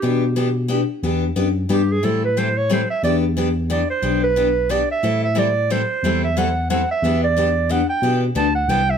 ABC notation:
X:1
M:3/4
L:1/16
Q:"Swing" 1/4=180
K:Em
V:1 name="Clarinet"
G8 z4 | z8 G2 ^G2 | A2 B2 c2 ^c2 =c2 e2 | d2 z6 d2 c2- |
c2 B6 d2 e2- | e2 e2 d4 c4- | c2 e2 f4 f2 e2- | e2 d6 f2 g2- |
g2 z2 a2 f2 g2 e2 |]
V:2 name="Steel-string acoustic guitar"
[E,B,DG]2 z2 [E,B,DG] z3 [E,B,DG] z3 | [E,B,DG]2 z2 [E,B,DG] z3 [E,B,DG] z3 | [E,G,CEA]2 z2 [E,G,CEA] z3 [E,G,CEA] z3 | [E,B,DG]2 z2 [E,B,DG] z3 [E,B,DG] z3 |
[E,B,DG]2 z2 [E,B,DG] z3 [E,B,DG] z3 | [E,G,CEA]2 z2 [E,G,CEA] z3 [E,G,CEA] z3 | [E,G,CEA]2 z2 [E,G,CEA] z3 [E,G,CEA] z3 | [E,B,DG]2 z2 [E,B,DG] z3 [E,B,DG] z3 |
[E,B,DG]2 z2 [E,B,DG] z3 [E,B,DG] z3 |]
V:3 name="Tine electric piano" clef=bass
B,,12 | E,,4 F,,4 G,,4 | A,,12 | E,,12 |
B,,,12 | A,,12 | E,,12 | E,,12 |
B,,4 D,,4 C,,4 |]